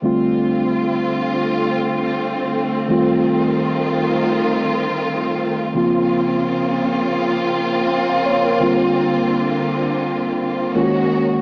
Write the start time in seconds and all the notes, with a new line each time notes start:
0.03 D3 G3 A3 C4 F4
2.88 D#3 G3 A3 C4 F4
5.74 C#3 F3 A#3 C4 F4
8.09 F5
8.26 C#5
8.45 A#4
8.60 D3 G3 A#3 C4 F4
10.74 D#3 G#3 A#3 C#4 F4 F#4
10.83 F#4